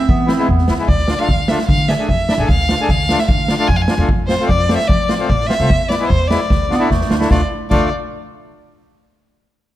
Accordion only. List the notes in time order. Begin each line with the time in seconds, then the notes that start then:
0.27 B3 E4
0.38 G#3 B3 E4
0.69 B3 E4
0.79 G#3 B3 E4
1.09 D4 F4
1.19 A3 D4 F4
1.50 A3 D4 F4
1.89 D4 G#4
1.99 A3 D4 G#4
2.29 D4 E4
2.39 A3 D4 G#4
2.71 D4 F4
2.81 A3 D4 G#4
3.10 A3 D4 F4
3.50 D4 F4
3.59 A3 D4 F4
3.89 D4 F4
3.99 A3 D4 F4
4.30 C4 F4
4.41 A3 C4 F4
4.70 A3 C4 F4
5.09 C4 F4
5.19 A3 C4 F4
5.49 C4 F4
5.60 A3 C4 F4
5.90 B3 E4
5.99 G#3 B3 E4
6.30 G#3 B3 E4
6.70 D4 F4
6.79 A3 D4 E4
7.10 D4 F4
7.19 A3 D4 E4
7.30 A3 D4 F4
7.70 A3 D4 F4